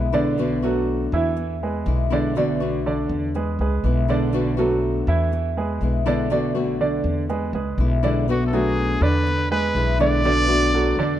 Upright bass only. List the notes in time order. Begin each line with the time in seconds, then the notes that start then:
Already playing: B1
1.12 E2
1.86 B1
3.09 E2
3.59 C#2
3.84 B1
5.07 E2
5.81 B1
7.04 E2
7.53 C#2
7.78 B1
9.01 E2
9.75 B1
10.97 E2